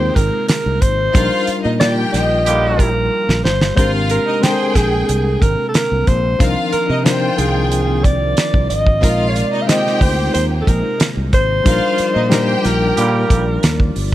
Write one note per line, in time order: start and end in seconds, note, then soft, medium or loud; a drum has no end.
0.00 1.12 C3 medium
0.00 1.12 G#3 medium
0.00 1.17 G#3 medium
0.00 1.10 A#3 medium
0.00 1.16 C4 medium
0.00 1.12 D#4 medium
0.00 1.15 D#4 medium
0.00 1.16 F4 medium
0.00 0.12 G4 loud
0.00 1.17 G#4 medium
0.00 1.16 A#4 medium
0.00 0.17 C5 loud
0.00 0.12 G5 loud
0.15 0.29 G#1 loud
0.15 0.48 A#4 medium
0.15 kick medium
0.15 closed hi-hat medium
0.48 0.83 A#4 loud
0.48 snare loud
0.48 closed hi-hat medium
0.66 0.79 C2 loud
0.81 1.08 G#1 medium
0.81 1.53 C5 loud
0.81 kick medium
0.81 closed hi-hat medium
1.14 1.28 A#1 loud
1.14 3.75 F3 medium
1.14 1.55 G3 medium
1.14 3.75 G3 medium
1.14 1.55 D4 medium
1.14 1.56 D#4 medium
1.14 1.61 F4 loud
1.14 3.75 F4 medium
1.14 1.56 F4 medium
1.14 1.57 A#4 medium
1.14 1.61 F5 loud
1.14 kick loud
1.14 closed hi-hat medium
1.47 muted fingered electric bass stroke soft
1.47 closed hi-hat medium
1.63 2.04 A#2 loud
1.63 1.77 D#4 medium
1.63 1.77 D#5 medium
1.79 2.61 G3 medium
1.79 2.62 A#3 medium
1.79 2.62 D#4 medium
1.79 2.63 F4 medium
1.79 2.75 G4 loud
1.79 2.63 A#4 medium
1.79 1.95 D5 loud
1.79 2.75 G5 loud
1.79 snare loud
1.79 closed hi-hat medium
2.13 3.08 A#1 medium
2.13 2.81 D#5 loud
2.13 snare soft
2.13 closed hi-hat medium
2.46 2.93 D3 medium
2.46 2.93 G3 medium
2.46 2.93 A#3 medium
2.46 2.93 G4 loud
2.46 closed hi-hat loud
2.79 3.44 A#4 loud
2.79 kick medium
2.79 closed hi-hat medium
3.29 3.42 A#1 medium
3.29 snare medium
3.44 3.71 G1 medium
3.44 3.75 C5 medium
3.44 snare medium
3.61 snare loud
3.76 4.17 G#1 loud
3.76 6.38 C3 medium
3.76 4.17 G#3 medium
3.76 8.99 A#3 medium
3.76 4.18 C4 medium
3.76 4.18 D4 medium
3.76 4.24 F4 loud
3.76 4.19 G4 medium
3.76 4.19 A#4 medium
3.76 3.92 C5 loud
3.76 4.23 F5 loud
3.76 6.38 G5 loud
3.76 kick loud
3.76 closed hi-hat medium
4.09 4.45 A#4 loud
4.09 closed hi-hat medium
4.27 4.40 D#4 medium
4.27 4.40 D#5 loud
4.40 5.23 G#3 medium
4.40 5.24 C4 medium
4.40 5.25 D4 medium
4.40 5.38 G#4 loud
4.40 4.50 A4 medium
4.40 4.77 C5 loud
4.40 5.25 G5 medium
4.40 5.38 G5 loud
4.40 snare loud
4.40 closed hi-hat medium
4.51 5.29 A#4 medium
4.75 5.02 A#1 loud
4.75 5.43 G#4 loud
4.75 kick loud
4.75 snare soft
4.75 closed hi-hat medium
5.09 5.35 C2 loud
5.09 closed hi-hat loud
5.42 5.55 G#1 loud
5.42 5.68 A#4 loud
5.42 kick medium
5.42 closed hi-hat medium
5.69 5.76 A4 medium
5.74 6.09 A#4 loud
5.74 snare loud
5.74 closed hi-hat medium
5.92 6.04 C2 medium
6.07 6.34 A#1 medium
6.07 6.46 C5 loud
6.07 kick medium
6.07 closed hi-hat medium
6.39 6.53 C2 loud
6.39 9.00 D#3 medium
6.39 6.80 F3 medium
6.39 9.00 C4 medium
6.39 6.81 C4 medium
6.39 6.81 D4 medium
6.39 6.82 D#4 medium
6.39 9.00 F4 medium
6.39 6.87 F4 loud
6.39 6.82 A#4 medium
6.39 6.87 F5 loud
6.39 kick loud
6.39 closed hi-hat loud
6.72 7.06 A#4 loud
6.72 muted fingered electric bass stroke soft
6.72 closed hi-hat medium
6.89 7.29 C3 loud
6.89 7.02 D#4 medium
6.89 7.02 D#5 loud
7.05 7.87 F3 medium
7.05 7.87 C4 medium
7.05 7.88 D4 medium
7.05 7.88 D#4 medium
7.05 8.01 F4 loud
7.05 7.89 A#4 medium
7.05 7.40 C5 loud
7.05 8.01 G5 loud
7.05 snare loud
7.05 closed hi-hat loud
7.38 8.33 C2 medium
7.38 8.05 G#4 medium
7.38 closed hi-hat medium
7.72 closed hi-hat loud
8.04 8.69 D5 loud
8.04 kick loud
8.04 closed hi-hat medium
8.37 snare loud
8.37 closed hi-hat loud
8.54 8.67 C2 medium
8.54 kick loud
8.70 9.03 G#1 medium
8.70 9.30 D#5 loud
8.70 closed hi-hat medium
8.87 kick medium
9.01 9.42 A#1 loud
9.01 11.63 C3 medium
9.01 9.43 G#3 medium
9.01 11.63 G#3 medium
9.01 11.63 A#3 medium
9.01 9.43 C4 medium
9.01 11.63 D#4 medium
9.01 9.44 D#4 medium
9.01 9.49 F4 loud
9.01 9.44 F4 medium
9.01 9.45 A#4 medium
9.01 9.49 F5 loud
9.01 kick loud
9.01 closed hi-hat loud
9.29 9.37 C#5 medium
9.36 9.63 D5 loud
9.36 closed hi-hat medium
9.52 9.65 D#4 medium
9.52 9.66 D#5 loud
9.62 9.70 F5 medium
9.67 10.49 G#3 medium
9.67 10.50 C4 medium
9.67 10.50 D#4 medium
9.67 10.51 F4 medium
9.67 10.63 G4 loud
9.67 10.51 C5 medium
9.67 10.03 D#5 loud
9.67 10.63 G5 loud
9.67 snare loud
9.67 closed hi-hat loud
9.87 snare soft
10.01 10.28 D2 medium
10.01 10.33 C5 medium
10.01 kick loud
10.01 open hi-hat medium
10.34 10.61 D#2 loud
10.34 10.46 C5 medium
10.34 closed hi-hat loud
10.61 10.69 A4 medium
10.67 10.81 A#1 loud
10.67 11.06 A#4 medium
10.67 kick medium
10.67 closed hi-hat medium
11.00 snare loud
11.00 closed hi-hat loud
11.17 11.30 C2 medium
11.33 11.59 G#1 medium
11.33 12.67 C5 loud
11.33 kick medium
11.33 closed hi-hat medium
11.64 11.79 A#1 loud
11.64 14.15 F3 medium
11.64 12.06 G3 medium
11.64 14.15 G3 medium
11.64 12.06 D4 medium
11.64 12.06 D#4 medium
11.64 14.15 F4 medium
11.64 12.07 F4 medium
11.64 12.13 F4 loud
11.64 12.07 A#4 medium
11.64 14.15 D5 medium
11.64 12.13 F5 loud
11.64 kick loud
11.64 closed hi-hat loud
11.98 muted fingered electric bass stroke medium
11.98 closed hi-hat medium
12.15 12.55 A#2 loud
12.15 12.28 D#4 loud
12.15 12.28 D#5 medium
12.30 13.12 G3 medium
12.30 13.13 D4 medium
12.30 13.13 D#4 medium
12.30 13.14 F4 medium
12.30 13.26 G4 loud
12.30 13.14 A#4 loud
12.30 13.26 G5 loud
12.30 snare loud
12.30 closed hi-hat loud
12.65 12.91 A#1 loud
12.65 13.96 A#4 medium
12.65 snare soft
12.65 closed hi-hat medium
12.97 13.24 A#2 loud
12.97 13.44 D3 medium
12.97 13.44 G3 medium
12.97 13.44 A#3 medium
12.97 13.44 G4 medium
12.97 closed hi-hat loud
13.30 13.56 A#1 medium
13.30 kick loud
13.30 closed hi-hat medium
13.63 13.89 D#2 medium
13.63 snare loud
13.63 closed hi-hat loud
13.80 kick loud
13.96 14.09 G1 medium
13.96 open hi-hat medium